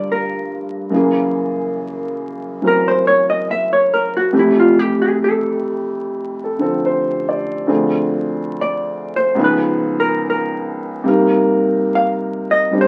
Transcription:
Already playing: upright piano G2 D3 F3 G3 A#3 F4 G4
0.12 hollow-body jazz guitar A#4
0.90 upright piano F#2 C#3 E3 A#3
0.95 upright piano G#4
2.62 upright piano E3 F#3 C4 A#4
2.67 hollow-body jazz guitar A#4
2.88 hollow-body jazz guitar C5
3.07 hollow-body jazz guitar C#5
3.30 hollow-body jazz guitar D#5
3.51 hollow-body jazz guitar E5
3.73 hollow-body jazz guitar C#5
3.94 hollow-body jazz guitar A#4
4.17 hollow-body jazz guitar F#4
4.33 upright piano F2 C3 E3 A3 G4
4.39 hollow-body jazz guitar E4
4.60 hollow-body jazz guitar F4
4.79 hollow-body jazz guitar G4
5.02 hollow-body jazz guitar G#4
5.24 hollow-body jazz guitar A4
6.44 upright piano A4
6.59 upright piano D3 F3 C4 A4
6.86 upright piano C5
7.29 upright piano D5
7.67 upright piano D2 D3 F3 C4 G#4
8.61 hollow-body jazz guitar D5
9.16 hollow-body jazz guitar C5
9.35 upright piano C#2 C#3 F3 B3 D#4
9.40 upright piano G#4
9.44 hollow-body jazz guitar B4
10.00 hollow-body jazz guitar A#4
10.30 hollow-body jazz guitar A#4
11.04 upright piano C3 G3 A#3 D#4
11.08 upright piano A#4
11.95 hollow-body jazz guitar F5
12.51 hollow-body jazz guitar D#5
12.71 upright piano G3 C4 D4 G4
12.81 hollow-body jazz guitar C5

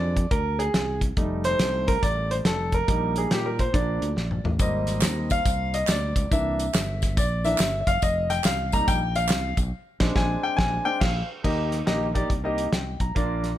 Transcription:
Already playing: fingered electric bass F2, grand piano G#3 C4 D4 D5
0.17 kick, closed hi-hat
0.31 fingered electric bass D2, grand piano A#4, kick, closed hi-hat
0.59 grand piano G#4, closed hi-hat
0.74 fingered electric bass C2, snare, closed hi-hat
1.01 kick, closed hi-hat
1.17 fingered electric bass F1, grand piano G3 A3 D#4, kick, closed hi-hat
1.44 grand piano C5, snare, closed hi-hat
1.59 fingered electric bass C2, snare, closed hi-hat
1.88 grand piano A#4, kick, closed hi-hat
2.03 fingered electric bass A1, grand piano D5, kick, closed hi-hat
2.31 grand piano C5, closed hi-hat
2.45 fingered electric bass F1, grand piano A4, snare, closed hi-hat
2.72 grand piano A#4, kick, closed hi-hat
2.87 fingered electric bass A#1, grand piano G3 A#3 D#4, kick, closed hi-hat
3.16 grand piano G#4, closed hi-hat
3.31 fingered electric bass A#2, grand piano G4, snare, closed hi-hat
3.46 grand piano A#4
3.59 grand piano C5, kick, closed hi-hat
3.72 fingered electric bass A#1, grand piano F3 A#3 D4 D5, kick, closed hi-hat
4.02 fingered electric bass D2, closed hi-hat
4.16 fingered electric bass A#1, snare
4.31 mid tom
4.44 fingered electric bass A1, floor tom
4.59 fingered electric bass G#1, grand piano G3 A#3 C4 D#5, kick, closed hi-hat, tambourine
4.87 snare, closed hi-hat, tambourine
5.01 fingered electric bass D#2, snare, clap, closed hi-hat, tambourine
5.30 grand piano F5, kick, closed hi-hat, tambourine
5.46 fingered electric bass C2, kick, closed hi-hat, tambourine
5.74 grand piano D#5, closed hi-hat, tambourine
5.87 fingered electric bass D2, grand piano D5, snare, clap, closed hi-hat, tambourine
6.16 fingered electric bass C#2, kick, closed hi-hat, tambourine
6.31 fingered electric bass C2, grand piano E3 A#3 D4 E5, kick, closed hi-hat, tambourine
6.59 closed hi-hat, tambourine
6.74 fingered electric bass G1, snare, clap, closed hi-hat, tambourine
7.02 kick, snare, closed hi-hat, tambourine
7.17 fingered electric bass A#1, grand piano D5, kick, closed hi-hat, tambourine
7.44 grand piano E3 A#3 D4 E5, closed hi-hat, tambourine
7.58 fingered electric bass G1, snare, clap, closed hi-hat, tambourine
7.81 grand piano E5
7.87 fingered electric bass F#1, grand piano F5, kick, closed hi-hat, tambourine
8.02 fingered electric bass F1, grand piano D#5, kick, closed hi-hat, tambourine
8.30 grand piano G5, snare, closed hi-hat, tambourine
8.44 fingered electric bass C2, grand piano F5, snare, clap, closed hi-hat, tambourine
8.72 grand piano G3 A#3 D#4 A#5, kick, closed hi-hat, tambourine
8.88 fingered electric bass A#1, grand piano G5, kick, closed hi-hat, tambourine
9.15 grand piano F5, closed hi-hat, tambourine
9.29 fingered electric bass C2, snare, clap, closed hi-hat, tambourine
9.57 fingered electric bass B1, kick, closed hi-hat, tambourine
10.00 fingered electric bass A#1, grand piano G#3 C4 D4, kick, snare, crash
10.16 fingered electric bass A#1, grand piano G#5, kick, snare
10.43 grand piano G5
10.57 fingered electric bass A#1, grand piano G#5, kick, snare
10.85 grand piano G#3 C4 D4 G5
11.00 fingered electric bass A#1, grand piano F5, kick, snare, crash
11.44 fingered electric bass D#2, grand piano D#3 A#3 D#4 G4 D#5, kick, crash
11.72 snare, closed hi-hat
11.86 fingered electric bass A#1, grand piano A#3 D#4 G4 D#5, snare, closed hi-hat
12.14 grand piano A#3 D#4 G4 D5, kick, closed hi-hat
12.30 fingered electric bass C2, kick, closed hi-hat
12.44 grand piano A#3 D#4 G4 D#5
12.58 closed hi-hat
12.72 fingered electric bass C2, grand piano G5, snare, closed hi-hat
13.00 fingered electric bass B1, grand piano A#5, kick, closed hi-hat
13.15 fingered electric bass A#1, grand piano A#2 A#3 D4 F4 D5, kick, closed hi-hat
13.44 snare, closed hi-hat

